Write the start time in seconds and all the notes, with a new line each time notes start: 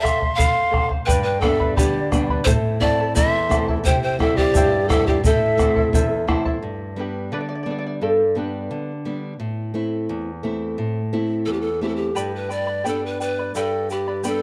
0.00 A4 C5 E5 F5 C6
0.05 bombo rim, bombo low, shaker
0.20 C5 F5, bombo low
0.35 A4 C5 F5 C6
0.39 F5, bombo low, shaker
0.71 A4 C5 F5, bombo rim, bombo low
0.89 C5 F5, bombo low
1.06 G2 G4 B4 D5 G5 B5, bombo low, shaker
1.23 B4 G5
1.41 G3 B3 D4 A4 B4 D5 F5 G5 B5, bombo rim, bombo low
1.49 E5
1.60 B4 D5 B5, bombo low
1.76 D3 G4 B4 D5 G5 B5, bombo low, shaker
2.12 G3 B3 D4 B4 D5 G5 B5, bombo rim, bombo low, shaker
2.29 B4 D5 B5, bombo low
2.44 A2 E4 A4 C5 E5 A5, bombo low, shaker
2.48 A5
2.80 A3 C4 E4 A4 D5 E5 A5, bombo rim, bombo low
3.00 E4 A4 A5
3.15 E2 E4 A4 C5 E5 A5 C6, bombo low, shaker
3.49 A3 C4 E4 A4 E5 A5, bombo rim, bombo low, shaker
3.68 E4 A4 A5, bombo low
3.84 C3 E4 G4 C5 E5 G5, bombo low, shaker
4.03 C5 G5
4.19 G3 C4 E4 A4 C5 E5 G5, bombo rim, bombo low
4.37 G4 C5 D5 G5, bombo low
4.41 E4
4.54 G2 E4 G4 C5 E5 G5, bombo low, shaker
4.89 G3 C4 E4 A4 C5 E5 G5, bombo rim, bombo low, shaker
5.07 E4 G4 C5 D5 G5, bombo low
5.24 A2 E4 A4 C5 E5 A5, bombo low, shaker
5.57 A3 C4 E4 C5 E5, bombo rim, bombo low, shaker
5.61 A5
5.76 E4 C5 A5, bombo low
5.93 E2 E4 A4 C5 E5 A5, bombo low, shaker
6.27 A3 C4 E4 C5 E5 A5, bombo rim, bombo low
6.45 E4 C5 A5, bombo low
6.62 G2
6.96 G3 B3 D4 B4
7.00 G4
7.32 D3 B4 D5
7.41 D5
7.49 D5
7.55 D5
7.63 G3 B3 D4 D5
7.71 D5
7.79 D5
7.87 D5
8.02 G2 A4 D5
8.35 G3 B3 D4 G4 B4
8.71 D3
9.05 G3 B3 D4
9.40 A2
9.74 A3 C4 E4
10.09 E2
10.43 A3 C4 E4
10.78 A2
11.13 A3 C4 E4
11.46 E2 A4
11.53 G4
11.61 A4
11.81 A3 C4 E4 G4
11.88 A4
11.96 G4
12.15 G2 G4 B4 D5 G5 B5, shaker
12.35 B4
12.49 B4 D5 G5 B5, shaker
12.67 B4 D5 B5
12.84 G3 B3 D4 G4 A4 B4 D5 G5 B5, shaker
13.06 B4
13.20 B4 D5 G5 B5, shaker
13.39 B4 D5 B5
13.55 G2 G4 A4 B4 D5 G5 B5, shaker
13.90 G4 B4 D5 G5 B5, shaker
14.08 B4 D5 B5
14.23 G3 B3 D4 G4 A4 B4 D5 G5 B5, shaker